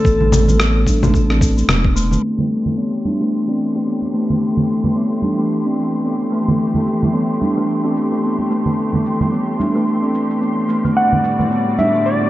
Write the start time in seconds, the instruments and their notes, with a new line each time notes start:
Already playing: electric slide guitar A4
0.05 analog synth bass A1, kick, shaker
0.20 steel tongue drum A3, high conga, low conga
0.32 low conga, shaker
0.48 steel tongue drum A3, high conga, low conga, shaker
0.59 steel tongue drum B3, cross-stick, shaker
0.87 steel tongue drum D4, kick, high conga, shaker
1.03 steel tongue drum A3, high bongo, low conga, shaker
1.14 kick, shaker
1.30 steel tongue drum C4, cross-stick
1.41 kick, shaker
1.57 steel tongue drum A3, shaker
1.68 analog synth bass E1, cross-stick, low conga, shaker
1.84 kick, high bongo
1.96 steel tongue drum A3, shaker
2.11 steel tongue drum A3, low conga, shaker
2.22 string section E3 A3 G4 C6, shaker
2.38 steel tongue drum A3, high conga, low conga
2.51 shaker
2.66 steel tongue drum A3, high conga, low conga, shaker
2.78 steel tongue drum B3, shaker
3.05 steel tongue drum D4, high conga, shaker
3.21 steel tongue drum A3, high bongo, shaker
3.33 shaker
3.48 steel tongue drum C4, high bongo
3.60 shaker
3.76 steel tongue drum A3, high bongo, shaker
3.87 steel tongue drum B3, shaker
4.02 high conga
4.14 steel tongue drum A3, shaker
4.30 steel tongue drum A3, low conga, shaker
4.42 shaker
4.57 steel tongue drum A3, low conga
4.69 shaker
4.84 steel tongue drum A3, high conga, low conga, shaker
4.96 steel tongue drum B3, shaker
5.22 steel tongue drum D4, high conga, shaker
5.37 steel tongue drum A3, high bongo, shaker
5.51 shaker
5.66 steel tongue drum C4
5.78 shaker
5.93 steel tongue drum A3, shaker
6.04 steel tongue drum B3, shaker
6.21 high bongo
6.32 steel tongue drum A3, shaker
6.48 steel tongue drum A3, low conga, shaker
6.60 shaker
6.74 steel tongue drum A3, high conga, low conga
6.87 shaker
7.02 steel tongue drum A3, high conga, low conga, shaker
7.14 steel tongue drum B3, shaker
7.41 steel tongue drum D4, high conga, shaker
7.57 steel tongue drum A3, high bongo, shaker
7.69 shaker
7.84 steel tongue drum C4, high bongo
7.96 shaker
8.12 steel tongue drum A3, high bongo, shaker
8.23 steel tongue drum B3, shaker
8.39 high conga
8.50 steel tongue drum A3, shaker
8.66 steel tongue drum A3, low conga, shaker
8.79 shaker
8.93 steel tongue drum A3, high conga, low conga
9.06 shaker
9.21 steel tongue drum A3, high conga, low conga, shaker
9.32 steel tongue drum B3, shaker
9.59 steel tongue drum D4, high conga, shaker
9.75 steel tongue drum A3, high bongo, shaker
9.87 shaker
10.02 steel tongue drum C4
10.15 shaker
10.30 steel tongue drum A3, shaker
10.41 steel tongue drum B3, shaker
10.57 high bongo
10.69 steel tongue drum A3, shaker
10.85 steel tongue drum A3, low conga, shaker
10.96 string section A2 D3 G3 F#4 D5, electric slide guitar F#5, shaker
11.12 steel tongue drum A3, high conga, low conga
11.24 shaker
11.39 steel tongue drum A3, high conga, low conga, shaker
11.51 steel tongue drum B3, shaker
11.78 steel tongue drum D4, electric slide guitar E5, high conga, shaker
11.94 steel tongue drum A3, high bongo, shaker
12.06 electric slide guitar D5, shaker
12.21 steel tongue drum B3, high bongo